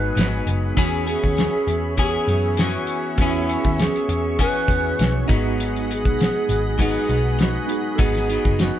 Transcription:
Already playing: G#1 G#2 F#3 B3 D#4 F#4 G#4 B4 D#5 F#5 B5
0.15 G#1 G#2 F#3 B3 D#4, snare, closed hi-hat, tambourine
0.47 F#1, closed hi-hat
0.75 E2 E3 B3 C#4 F#4 G#4 C#5 E5, kick, closed hi-hat
0.80 G#4
1.07 B3 C#4 G#4, closed hi-hat
1.23 D#2, kick
1.37 snare, closed hi-hat, tambourine
1.67 E2, closed hi-hat
1.97 E3 B3 C#4 G#4, kick, closed hi-hat
2.28 F#2, closed hi-hat
2.57 E3 B3 C#4 G#4, snare, closed hi-hat, tambourine
2.61 F#4
2.87 closed hi-hat
3.16 E2 B3 C#4 F#4 C#6, kick, closed hi-hat
3.21 B3 C#4 E4 G#4
3.49 closed hi-hat
3.64 D#2, kick
3.78 G#4, snare, closed hi-hat, tambourine
3.96 closed hi-hat
4.09 E2, closed hi-hat
4.39 E3 B3 C#4 G#4 B4, kick, closed hi-hat
4.68 E2 B3 C#4 F#4 G#4, kick, closed hi-hat
4.99 B1, snare, closed hi-hat, tambourine
5.26 G#1 B3 D#4 F#4 D#5 F#5 B5, kick, closed hi-hat
5.30 G#2 F#3 G#4
5.60 closed hi-hat
5.76 closed hi-hat
5.91 G#4, closed hi-hat
6.05 B1, kick
6.18 snare, closed hi-hat, tambourine
6.49 G#1, closed hi-hat
6.78 G#2 F#3 B3 D#4 G#4, kick, closed hi-hat
7.09 B1, closed hi-hat
7.39 F#4, snare, closed hi-hat, tambourine
7.67 B3 D#4 F#4, closed hi-hat
7.71 G#4
7.95 G#1 G#2 F#3 B3 A4, kick, closed hi-hat
8.00 D#4 G#4
8.14 snare, closed hi-hat
8.30 F#3 B3 D#4, closed hi-hat
8.45 F#1, kick
8.59 F#4, snare, closed hi-hat, tambourine

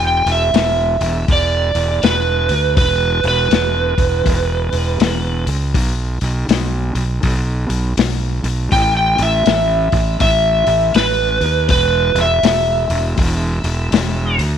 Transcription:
Already playing: E1
0.07 G5
0.26 E1, open hi-hat
0.32 E5
0.54 E1, snare, open hi-hat
1.01 E1, open hi-hat
1.28 E1, kick, open hi-hat
1.32 D5
1.75 E1, open hi-hat
2.03 E1 B4, snare, open hi-hat
2.49 D2, open hi-hat
2.77 E1 B4, kick, open hi-hat
3.23 E1, open hi-hat
3.28 B4
3.51 E1, snare, open hi-hat
3.98 E1, kick, open hi-hat
4.26 E1, kick, open hi-hat
4.72 E1, open hi-hat
5.00 E1, snare, open hi-hat
5.47 C#2, open hi-hat
5.74 B1, kick, open hi-hat
6.21 B1, open hi-hat
6.48 B1, snare, open hi-hat
6.95 B1, open hi-hat
7.23 B1, kick, open hi-hat
7.69 B1, open hi-hat
7.97 B1, snare, open hi-hat
8.43 B1, open hi-hat
8.72 A1 G5, kick, open hi-hat
8.97 G5
9.18 A1, open hi-hat
9.22 E5
9.46 A1, snare, open hi-hat
9.92 A1, kick, open hi-hat
10.20 A1 E5, kick, open hi-hat
10.67 A1, open hi-hat
10.94 A1 B4, snare, open hi-hat
11.41 D#2, open hi-hat
11.69 E1 B4, kick, open hi-hat
12.15 E1, open hi-hat
12.21 E5
12.43 E1, snare, open hi-hat
12.90 E1, open hi-hat
13.18 E1, kick, open hi-hat
13.64 E1, open hi-hat
13.92 E1, snare, open hi-hat
14.38 D2, open hi-hat

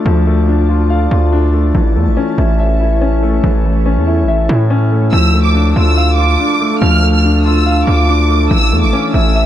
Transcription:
Already playing: F3 A3 D4 F4 A4 D5 F5 A5
0.06 D2 F3
0.27 A3
0.48 D4
0.69 F4
0.90 F5
1.11 D2 F4
1.32 D4
1.53 A3
1.75 A1 E3 E4 A4 C#5
1.96 E2 A3
2.07 A1
2.17 C#4
2.38 A1 E4
2.59 E5
2.80 E4
3.01 C#4
3.23 A3
3.44 A1 E3
3.65 A3
3.86 C#4
3.97 E2
4.07 E4
4.23 A1
4.28 E5
4.49 A2 E4
4.70 C#4
4.92 A3
5.13 D2 F3 D4 A4 F5 A5 E6
5.34 A3
5.45 D6
5.55 D4
5.76 D2 F4 E6
5.97 F5
6.18 F4 D6
6.39 D4
6.61 A3
6.82 D2 F3 F6
7.03 A3
7.14 F6
7.24 D4
7.45 F4 E6
7.66 F5
7.87 D2 F4 D6
8.08 D4
8.29 A3
8.51 A1 E3 C#4 E5 E6
8.72 E2 A3
8.83 A1 D6
8.93 C#4
9.14 A1 E4 E6
9.35 E5

